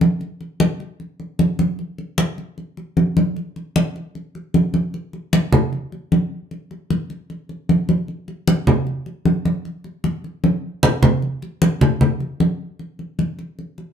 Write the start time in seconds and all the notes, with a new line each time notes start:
0.01 high conga
0.21 high conga
0.41 high conga
0.60 high conga
0.80 high conga
1.00 high conga
1.20 high conga
1.39 high conga
1.59 high conga
1.79 high conga
1.98 high conga
2.18 high conga
2.38 high conga
2.58 high conga
2.77 high conga
2.97 high conga
3.17 high conga
3.36 high conga
3.56 high conga
3.76 high conga
3.96 high conga
4.15 high conga
4.35 high conga
4.54 high conga
4.74 high conga
4.94 high conga
5.13 high conga
5.33 high conga
5.52 high conga, low conga
5.73 high conga
5.92 high conga
6.12 high conga
6.51 high conga
6.71 high conga
6.90 high conga
7.10 high conga
7.30 high conga
7.49 high conga
7.69 high conga
7.89 high conga
8.08 high conga
8.28 high conga
8.48 high conga
8.67 high conga, low conga
8.87 high conga
9.06 high conga
9.25 high conga
9.45 high conga
9.65 high conga
9.84 high conga
10.04 high conga
10.24 high conga
10.44 high conga
10.83 low conga
11.03 low conga
11.22 high conga
11.42 high conga
11.62 high conga
11.81 high conga, low conga
12.01 high conga, low conga
12.20 high conga
12.40 high conga
12.79 high conga
12.99 high conga
13.19 high conga
13.39 high conga
13.59 high conga
13.78 high conga